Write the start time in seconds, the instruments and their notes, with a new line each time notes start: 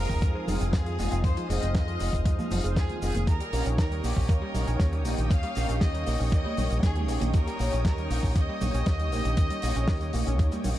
Already playing: analog polysynth G#3 C4 D#4 F4 C5, string machine G#4 F5 D#6, violin section A#4
0.10 fingered electric bass F1, synth arpeggio sound C4, kick, shaker
0.22 fingered electric bass F2, synth arpeggio sound G#3, kick, closed hi-hat, shaker
0.35 synth arpeggio sound F3
0.48 fingered electric bass F1, synth arpeggio sound G#3, open hi-hat, low conga, shaker
0.60 fingered electric bass F1, synth arpeggio sound C4, closed hi-hat, shaker
0.73 fingered electric bass F2, synth arpeggio sound D#3, violin section G#4, kick, snare, closed hi-hat, shaker
0.86 synth arpeggio sound F3, closed hi-hat
0.98 fingered electric bass F1, analog polysynth G#3 C4 D#4 F4 D#5, synth arpeggio sound G#3, open hi-hat, high conga, shaker
1.11 fingered electric bass F1, synth arpeggio sound C4, closed hi-hat, shaker
1.24 fingered electric bass F2, synth arpeggio sound D#3, violin section C5, kick, closed hi-hat, shaker
1.37 synth arpeggio sound F3, closed hi-hat
1.49 fingered electric bass F1, analog polysynth G#3 C4 D#4 F4 C5, synth arpeggio sound G#3, violin section D#5, open hi-hat, shaker
1.62 fingered electric bass F1, synth arpeggio sound C4, closed hi-hat, shaker
1.75 fingered electric bass F2, synth arpeggio sound D#3, kick, snare, closed hi-hat, shaker
1.88 synth arpeggio sound F3, closed hi-hat
2.00 fingered electric bass F1, synth arpeggio sound G#3, open hi-hat, shaker
2.13 fingered electric bass F1, synth arpeggio sound C4, kick, closed hi-hat, shaker
2.26 fingered electric bass F2, synth arpeggio sound G#3, kick, closed hi-hat, shaker
2.39 synth arpeggio sound F3, high conga, shaker
2.51 fingered electric bass F1, synth arpeggio sound F3, open hi-hat, low conga, shaker
2.64 fingered electric bass F1, analog polysynth G#3 C4 D#4 F4 C5, synth arpeggio sound G#3, closed hi-hat, shaker
2.76 fingered electric bass F2, synth arpeggio sound F3, violin section G#4, kick, snare, closed hi-hat, shaker
2.89 synth arpeggio sound D#3, closed hi-hat, high conga
3.02 fingered electric bass F1, synth arpeggio sound D#3, analog polysynth G#3 C4 D#4 F4 C5, violin section G#4, open hi-hat, shaker
3.14 fingered electric bass F1, synth arpeggio sound D#3, closed hi-hat, high conga, shaker
3.27 fingered electric bass D#2, synth arpeggio sound D#3, violin section A#4, string machine C#5 G5 D#6, kick, closed hi-hat, shaker
3.40 synth arpeggio sound G3, closed hi-hat
3.52 fingered electric bass A#1, analog polysynth A#3 C#4 D#4 G4 C#5, synth arpeggio sound A#3, open hi-hat, shaker
3.66 fingered electric bass A#1, synth arpeggio sound C#4, closed hi-hat, shaker
3.78 fingered electric bass D#2, synth arpeggio sound D#3, violin section A#4, kick, snare, closed hi-hat, shaker
3.91 synth arpeggio sound G3, closed hi-hat
4.04 fingered electric bass A#1, synth arpeggio sound A#3, violin section G4, open hi-hat, shaker
4.16 fingered electric bass A#1, synth arpeggio sound C#4, kick, shaker
4.29 fingered electric bass D#2, synth arpeggio sound A#3, violin section A#4, kick, closed hi-hat, shaker
4.42 synth arpeggio sound G3
4.54 fingered electric bass A#1, synth arpeggio sound A#3, open hi-hat, low conga, shaker
4.67 fingered electric bass A#1, synth arpeggio sound C#4, closed hi-hat, shaker
4.80 fingered electric bass D#2, synth arpeggio sound D#3, kick, snare, closed hi-hat, shaker
4.92 synth arpeggio sound G3, closed hi-hat
5.05 fingered electric bass A#1, synth arpeggio sound A#3, analog polysynth A#3 C#4 D#4 G4 D#5, open hi-hat, high conga, shaker
5.18 fingered electric bass A#1, synth arpeggio sound D#3, closed hi-hat, shaker
5.24 violin section G5
5.30 fingered electric bass D#2, synth arpeggio sound D#3, violin section F5, kick, closed hi-hat, shaker
5.43 synth arpeggio sound G3, closed hi-hat
5.55 fingered electric bass A#1, analog polysynth A#3 C#4 D#4 G4 C#5, synth arpeggio sound A#3, open hi-hat, shaker
5.69 fingered electric bass A#1, synth arpeggio sound C#4, closed hi-hat, shaker
5.81 fingered electric bass D#2, synth arpeggio sound D#3, violin section D#5, kick, snare, closed hi-hat, shaker
5.94 synth arpeggio sound G3, closed hi-hat
6.07 fingered electric bass A#1, synth arpeggio sound A#3, open hi-hat, shaker
6.19 fingered electric bass A#1, synth arpeggio sound C#4, shaker
6.32 fingered electric bass D#2, synth arpeggio sound A#3, violin section D#5, kick, closed hi-hat, shaker
6.45 synth arpeggio sound G3, high conga
6.57 fingered electric bass A#1, synth arpeggio sound A#3, open hi-hat, low conga, shaker
6.70 fingered electric bass A#1, synth arpeggio sound C#4, closed hi-hat, shaker
6.83 fingered electric bass D#2, synth arpeggio sound D#3, violin section G#4, kick, snare, closed hi-hat, shaker
6.96 synth arpeggio sound G3, closed hi-hat, high conga
7.08 fingered electric bass A#1, analog polysynth A#3 C#4 D#4 G4 D#5, synth arpeggio sound A#3, violin section G#4, open hi-hat, shaker
7.21 fingered electric bass A#1, synth arpeggio sound D#3, closed hi-hat, high conga, shaker
7.34 fingered electric bass D#2, synth arpeggio sound D#3, violin section A#4, kick, closed hi-hat, shaker
7.47 synth arpeggio sound G3, closed hi-hat
7.59 fingered electric bass A#1, analog polysynth A#3 C#4 D#4 G4 C#5, synth arpeggio sound A#3, open hi-hat, shaker
7.73 fingered electric bass A#1, synth arpeggio sound C#4, closed hi-hat, shaker
7.85 fingered electric bass D#2, synth arpeggio sound D#3, violin section A#4, kick, snare, closed hi-hat, shaker
7.98 synth arpeggio sound G3, closed hi-hat
8.10 fingered electric bass A#1, synth arpeggio sound A#3, open hi-hat, shaker
8.23 fingered electric bass A#1, synth arpeggio sound C#4, kick, shaker
8.36 fingered electric bass D#2, synth arpeggio sound A#3, violin section D#5, kick, closed hi-hat, shaker
8.49 synth arpeggio sound G3
8.61 fingered electric bass A#1, synth arpeggio sound A#3, open hi-hat, low conga, shaker
8.74 fingered electric bass A#1, synth arpeggio sound C#4, closed hi-hat, shaker
8.86 fingered electric bass D#2, synth arpeggio sound D#3, kick, snare, closed hi-hat, shaker
8.99 synth arpeggio sound G3, closed hi-hat
9.12 fingered electric bass A#1, analog polysynth A#3 C#4 D#4 G4 D#5, synth arpeggio sound A#3, open hi-hat, high conga, shaker
9.25 fingered electric bass A#1, synth arpeggio sound D#3, closed hi-hat, shaker
9.37 fingered electric bass D#2, synth arpeggio sound D#3, kick, closed hi-hat, shaker
9.50 synth arpeggio sound G3, closed hi-hat
9.62 fingered electric bass A#1, analog polysynth A#3 C#4 D#4 G4 C#5, synth arpeggio sound A#3, open hi-hat, shaker
9.75 fingered electric bass A#1, synth arpeggio sound C#4, closed hi-hat, shaker
9.88 fingered electric bass D#2, synth arpeggio sound D#3, kick, snare, open hi-hat, shaker
10.01 synth arpeggio sound G3, closed hi-hat, shaker
10.13 fingered electric bass A#1, synth arpeggio sound A#3, open hi-hat, high conga, shaker
10.27 fingered electric bass A#1, synth arpeggio sound C#4, closed hi-hat, shaker
10.39 fingered electric bass D#2, synth arpeggio sound A#3, kick, closed hi-hat, shaker
10.52 synth arpeggio sound G3, closed hi-hat, high conga, shaker
10.64 fingered electric bass A#1, synth arpeggio sound A#3, open hi-hat, low conga, shaker